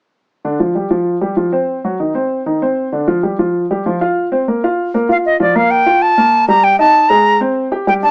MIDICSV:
0, 0, Header, 1, 3, 480
1, 0, Start_track
1, 0, Key_signature, -2, "major"
1, 0, Tempo, 309438
1, 686, Time_signature, 4, 2, 24, 8
1, 12579, End_track
2, 0, Start_track
2, 0, Title_t, "Flute"
2, 0, Program_c, 0, 73
2, 7931, Note_on_c, 0, 77, 76
2, 8024, Note_off_c, 0, 77, 0
2, 8158, Note_on_c, 0, 75, 70
2, 8369, Note_off_c, 0, 75, 0
2, 8396, Note_on_c, 0, 74, 71
2, 8624, Note_on_c, 0, 77, 76
2, 8648, Note_off_c, 0, 74, 0
2, 8854, Note_on_c, 0, 79, 81
2, 8877, Note_off_c, 0, 77, 0
2, 9339, Note_on_c, 0, 81, 89
2, 9362, Note_off_c, 0, 79, 0
2, 10051, Note_off_c, 0, 81, 0
2, 10060, Note_on_c, 0, 82, 93
2, 10297, Note_on_c, 0, 79, 94
2, 10320, Note_off_c, 0, 82, 0
2, 10529, Note_off_c, 0, 79, 0
2, 10538, Note_on_c, 0, 81, 91
2, 11000, Note_on_c, 0, 82, 91
2, 11023, Note_off_c, 0, 81, 0
2, 11484, Note_off_c, 0, 82, 0
2, 12223, Note_on_c, 0, 79, 92
2, 12316, Note_off_c, 0, 79, 0
2, 12458, Note_on_c, 0, 81, 83
2, 12579, Note_off_c, 0, 81, 0
2, 12579, End_track
3, 0, Start_track
3, 0, Title_t, "Grand piano"
3, 0, Program_c, 1, 0
3, 691, Note_on_c, 1, 50, 65
3, 695, Note_on_c, 1, 62, 64
3, 886, Note_off_c, 1, 50, 0
3, 888, Note_off_c, 1, 62, 0
3, 928, Note_on_c, 1, 53, 58
3, 931, Note_on_c, 1, 65, 55
3, 1124, Note_off_c, 1, 53, 0
3, 1126, Note_off_c, 1, 65, 0
3, 1164, Note_on_c, 1, 55, 55
3, 1171, Note_on_c, 1, 67, 55
3, 1362, Note_off_c, 1, 55, 0
3, 1366, Note_off_c, 1, 67, 0
3, 1404, Note_on_c, 1, 53, 59
3, 1406, Note_on_c, 1, 65, 54
3, 1799, Note_off_c, 1, 53, 0
3, 1800, Note_off_c, 1, 65, 0
3, 1882, Note_on_c, 1, 55, 63
3, 1884, Note_on_c, 1, 67, 59
3, 2081, Note_off_c, 1, 55, 0
3, 2082, Note_off_c, 1, 67, 0
3, 2117, Note_on_c, 1, 53, 57
3, 2124, Note_on_c, 1, 65, 57
3, 2318, Note_off_c, 1, 53, 0
3, 2323, Note_off_c, 1, 65, 0
3, 2364, Note_on_c, 1, 60, 60
3, 2366, Note_on_c, 1, 72, 59
3, 2759, Note_off_c, 1, 60, 0
3, 2761, Note_off_c, 1, 72, 0
3, 2860, Note_on_c, 1, 54, 63
3, 2865, Note_on_c, 1, 66, 58
3, 3052, Note_off_c, 1, 54, 0
3, 3055, Note_off_c, 1, 66, 0
3, 3098, Note_on_c, 1, 51, 55
3, 3098, Note_on_c, 1, 63, 58
3, 3291, Note_off_c, 1, 51, 0
3, 3291, Note_off_c, 1, 63, 0
3, 3327, Note_on_c, 1, 60, 61
3, 3334, Note_on_c, 1, 72, 61
3, 3722, Note_off_c, 1, 60, 0
3, 3726, Note_off_c, 1, 72, 0
3, 3818, Note_on_c, 1, 51, 58
3, 3819, Note_on_c, 1, 63, 60
3, 4011, Note_off_c, 1, 51, 0
3, 4012, Note_off_c, 1, 63, 0
3, 4064, Note_on_c, 1, 60, 59
3, 4067, Note_on_c, 1, 72, 59
3, 4452, Note_off_c, 1, 60, 0
3, 4454, Note_off_c, 1, 72, 0
3, 4535, Note_on_c, 1, 50, 64
3, 4542, Note_on_c, 1, 62, 64
3, 4730, Note_off_c, 1, 50, 0
3, 4734, Note_off_c, 1, 62, 0
3, 4771, Note_on_c, 1, 53, 64
3, 4774, Note_on_c, 1, 65, 64
3, 4967, Note_off_c, 1, 53, 0
3, 4969, Note_off_c, 1, 65, 0
3, 5013, Note_on_c, 1, 67, 57
3, 5015, Note_on_c, 1, 55, 58
3, 5209, Note_off_c, 1, 67, 0
3, 5210, Note_off_c, 1, 55, 0
3, 5256, Note_on_c, 1, 53, 57
3, 5260, Note_on_c, 1, 65, 60
3, 5648, Note_off_c, 1, 53, 0
3, 5650, Note_off_c, 1, 65, 0
3, 5748, Note_on_c, 1, 55, 61
3, 5751, Note_on_c, 1, 67, 65
3, 5938, Note_off_c, 1, 55, 0
3, 5940, Note_off_c, 1, 67, 0
3, 5987, Note_on_c, 1, 53, 63
3, 5992, Note_on_c, 1, 65, 58
3, 6177, Note_off_c, 1, 53, 0
3, 6180, Note_off_c, 1, 65, 0
3, 6223, Note_on_c, 1, 65, 66
3, 6226, Note_on_c, 1, 77, 62
3, 6612, Note_off_c, 1, 65, 0
3, 6614, Note_off_c, 1, 77, 0
3, 6698, Note_on_c, 1, 60, 62
3, 6700, Note_on_c, 1, 72, 63
3, 6892, Note_off_c, 1, 60, 0
3, 6894, Note_off_c, 1, 72, 0
3, 6947, Note_on_c, 1, 58, 58
3, 6952, Note_on_c, 1, 70, 57
3, 7138, Note_off_c, 1, 58, 0
3, 7141, Note_off_c, 1, 70, 0
3, 7194, Note_on_c, 1, 65, 61
3, 7198, Note_on_c, 1, 77, 57
3, 7578, Note_off_c, 1, 65, 0
3, 7581, Note_off_c, 1, 77, 0
3, 7666, Note_on_c, 1, 58, 62
3, 7671, Note_on_c, 1, 70, 62
3, 7857, Note_off_c, 1, 58, 0
3, 7860, Note_off_c, 1, 70, 0
3, 7894, Note_on_c, 1, 65, 55
3, 7900, Note_on_c, 1, 77, 55
3, 8287, Note_off_c, 1, 65, 0
3, 8290, Note_off_c, 1, 77, 0
3, 8375, Note_on_c, 1, 53, 63
3, 8375, Note_on_c, 1, 65, 68
3, 8571, Note_off_c, 1, 53, 0
3, 8571, Note_off_c, 1, 65, 0
3, 8612, Note_on_c, 1, 58, 66
3, 8618, Note_on_c, 1, 70, 65
3, 9005, Note_off_c, 1, 58, 0
3, 9009, Note_off_c, 1, 70, 0
3, 9093, Note_on_c, 1, 65, 63
3, 9096, Note_on_c, 1, 77, 63
3, 9486, Note_off_c, 1, 65, 0
3, 9488, Note_off_c, 1, 77, 0
3, 9580, Note_on_c, 1, 58, 66
3, 9584, Note_on_c, 1, 70, 62
3, 9970, Note_off_c, 1, 58, 0
3, 9972, Note_off_c, 1, 70, 0
3, 10055, Note_on_c, 1, 55, 74
3, 10058, Note_on_c, 1, 67, 74
3, 10447, Note_off_c, 1, 55, 0
3, 10448, Note_off_c, 1, 67, 0
3, 10529, Note_on_c, 1, 63, 65
3, 10533, Note_on_c, 1, 75, 66
3, 10923, Note_off_c, 1, 63, 0
3, 10925, Note_off_c, 1, 75, 0
3, 11009, Note_on_c, 1, 56, 75
3, 11017, Note_on_c, 1, 68, 72
3, 11403, Note_off_c, 1, 56, 0
3, 11407, Note_off_c, 1, 68, 0
3, 11487, Note_on_c, 1, 60, 66
3, 11496, Note_on_c, 1, 72, 65
3, 11881, Note_off_c, 1, 60, 0
3, 11887, Note_off_c, 1, 72, 0
3, 11970, Note_on_c, 1, 67, 68
3, 11975, Note_on_c, 1, 79, 63
3, 12166, Note_off_c, 1, 67, 0
3, 12169, Note_off_c, 1, 79, 0
3, 12209, Note_on_c, 1, 55, 69
3, 12212, Note_on_c, 1, 67, 71
3, 12406, Note_off_c, 1, 55, 0
3, 12407, Note_off_c, 1, 67, 0
3, 12449, Note_on_c, 1, 62, 65
3, 12456, Note_on_c, 1, 74, 63
3, 12579, Note_off_c, 1, 62, 0
3, 12579, Note_off_c, 1, 74, 0
3, 12579, End_track
0, 0, End_of_file